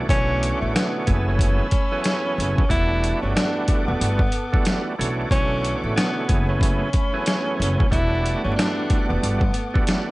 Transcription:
0.00 1.03 A3 medium
0.00 1.06 E5 medium
0.00 1.06 C#6 medium
0.00 1.06 D6 medium
0.09 0.50 B1 loud
0.09 1.07 B2 medium
0.09 1.07 D3 medium
0.09 1.05 E3 medium
0.09 1.05 A3 medium
0.09 1.05 C#4 medium
0.09 0.59 C#4 loud
0.09 1.07 F#4 loud
0.09 kick loud
0.09 closed hi-hat loud
0.43 closed hi-hat medium
0.62 0.72 A1 medium
0.62 0.73 A3 medium
0.75 1.24 B3 medium
0.75 snare loud
0.75 closed hi-hat medium
1.06 1.59 F#1 medium
1.06 1.67 F#2 loud
1.06 1.68 E3 medium
1.06 1.68 A3 medium
1.06 2.68 A3 medium
1.06 1.68 B3 medium
1.06 1.68 C#4 medium
1.06 1.68 G#4 loud
1.06 2.68 G#5 medium
1.06 2.68 B5 medium
1.06 2.68 E6 medium
1.06 kick loud
1.06 closed hi-hat medium
1.28 2.67 C#4 medium
1.39 kick medium
1.39 closed hi-hat loud
1.71 kick medium
1.71 closed hi-hat medium
1.91 2.65 F#2 medium
1.91 2.65 E3 medium
1.91 2.65 A3 medium
1.91 2.65 B3 medium
1.91 2.65 C#4 medium
1.91 2.65 G#4 medium
2.04 snare loud
2.04 closed hi-hat loud
2.38 2.53 F#1 loud
2.38 closed hi-hat medium
2.58 kick medium
2.69 3.11 E1 loud
2.69 4.22 E2 loud
2.69 4.22 G3 medium
2.69 4.22 A3 medium
2.69 4.22 B3 medium
2.69 4.23 D4 medium
2.69 3.20 E4 loud
2.69 4.23 F#4 loud
2.69 6.25 A4 medium
2.69 4.96 F#5 medium
2.69 4.96 A5 medium
2.69 4.96 D6 medium
2.69 kick loud
2.69 closed hi-hat loud
3.04 closed hi-hat medium
3.22 3.33 G1 medium
3.22 3.34 C#4 medium
3.36 3.85 D4 medium
3.36 snare loud
3.36 closed hi-hat medium
3.68 kick loud
3.68 closed hi-hat medium
3.88 3.98 E1 medium
3.88 4.82 B3 medium
4.01 4.26 G1 medium
4.01 closed hi-hat loud
4.19 kick loud
4.32 closed hi-hat medium
4.52 4.95 E2 medium
4.52 4.95 G3 medium
4.52 4.95 A3 medium
4.52 4.95 B3 medium
4.52 4.95 D4 medium
4.52 4.96 F#4 medium
4.52 kick loud
4.65 snare loud
4.65 closed hi-hat loud
4.98 5.24 B1 medium
4.98 5.29 B2 loud
4.98 5.29 E3 medium
4.98 5.29 A3 medium
4.98 5.29 C#4 medium
4.98 5.29 D4 medium
4.98 5.29 F#4 loud
4.98 7.89 E5 medium
4.98 6.28 C#6 medium
4.98 6.28 D6 medium
4.98 closed hi-hat medium
5.30 5.72 B1 loud
5.30 6.28 B2 medium
5.30 6.29 D3 medium
5.30 6.26 E3 medium
5.30 6.27 A3 medium
5.30 6.27 C#4 medium
5.30 5.80 C#4 loud
5.30 6.29 F#4 loud
5.30 kick loud
5.30 closed hi-hat loud
5.65 closed hi-hat medium
5.84 5.94 A1 medium
5.84 5.96 A3 medium
5.96 6.45 B3 loud
5.96 snare loud
5.96 closed hi-hat medium
6.28 6.80 F#1 loud
6.28 6.89 F#2 loud
6.28 6.89 E3 medium
6.28 6.89 A3 medium
6.28 10.11 A3 medium
6.28 6.90 B3 medium
6.28 6.90 C#4 medium
6.28 6.90 G#4 loud
6.28 7.90 G#5 medium
6.28 7.90 B5 medium
6.28 kick loud
6.28 closed hi-hat medium
6.49 7.88 C#4 medium
6.61 kick medium
6.61 closed hi-hat loud
6.93 kick medium
6.93 closed hi-hat medium
7.13 7.86 F#2 medium
7.13 7.86 E3 medium
7.13 7.87 A3 medium
7.13 7.87 B3 medium
7.13 7.87 C#4 medium
7.13 7.87 G#4 medium
7.26 snare loud
7.26 closed hi-hat loud
7.60 7.75 F#1 loud
7.60 closed hi-hat medium
7.80 kick loud
7.91 8.33 E1 loud
7.91 9.44 E2 loud
7.91 9.44 G3 medium
7.91 9.44 A3 medium
7.91 9.44 B3 medium
7.91 9.44 D4 medium
7.91 8.41 E4 loud
7.91 9.44 F#4 loud
7.91 10.11 F#5 medium
7.91 10.11 A5 medium
7.91 10.11 D6 medium
7.91 kick loud
7.91 closed hi-hat loud
8.26 closed hi-hat medium
8.44 8.55 G1 medium
8.44 8.56 C#4 medium
8.56 9.06 D4 medium
8.56 snare loud
8.56 closed hi-hat medium
8.90 kick loud
8.90 closed hi-hat medium
9.09 9.20 E1 medium
9.09 10.03 B3 medium
9.23 9.48 G1 loud
9.23 closed hi-hat loud
9.41 kick loud
9.54 closed hi-hat medium
9.74 10.11 E2 medium
9.74 10.11 G3 medium
9.74 10.11 A3 medium
9.74 10.11 B3 medium
9.74 10.11 D4 medium
9.74 10.11 F#4 medium
9.74 kick loud
9.87 snare loud
9.87 closed hi-hat medium

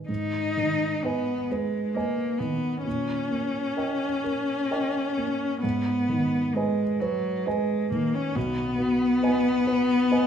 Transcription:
0.00 0.11 D#3 soft
0.00 0.12 B4 soft
0.00 0.11 D#5 soft
0.00 0.11 G#5 soft
0.09 2.81 G#2 soft
0.09 1.05 D#4 medium
0.57 1.33 D#3 soft
1.04 1.52 B3 medium
1.04 1.47 B4 soft
1.04 1.47 D#5 soft
1.04 1.48 G#5 soft
1.50 1.96 G#3 soft
1.50 1.94 B4 soft
1.94 2.40 A#3 medium
1.94 2.37 B4 soft
1.94 2.37 D#5 soft
1.94 2.37 G#5 soft
2.38 2.85 D#3 soft
2.38 2.82 B3 medium
2.83 5.59 A#2 soft
2.83 5.58 C#4 medium
3.31 4.06 A#3 soft
3.77 4.20 A#4 soft
3.77 4.20 D#5 soft
3.77 4.21 G5 soft
4.24 4.70 A#4 soft
4.71 5.13 A#4 soft
4.71 5.13 D#5 soft
4.71 5.14 G5 soft
5.18 5.63 A#3 soft
5.61 8.32 G#2 soft
5.61 6.57 B3 medium
6.09 6.83 D#3 soft
6.55 7.02 G#3 medium
6.55 6.98 B4 soft
6.55 6.98 D#5 soft
6.55 6.98 G#5 soft
7.01 7.48 F#3 medium
7.01 7.45 B4 soft
7.46 7.91 G#3 medium
7.46 7.88 B4 soft
7.46 7.88 D#5 soft
7.46 7.88 G#5 soft
7.91 8.36 D#3 soft
7.91 8.16 A#3 medium
8.15 8.37 C#4 medium
8.35 10.27 B1 soft
8.35 10.27 B3 medium
8.78 9.49 B2 soft
9.23 9.63 B4 soft
9.23 9.64 D#5 soft
9.23 9.64 G#5 soft
9.67 10.10 B4 soft
10.12 10.27 B4 soft
10.12 10.27 D#5 soft
10.12 10.27 G#5 soft

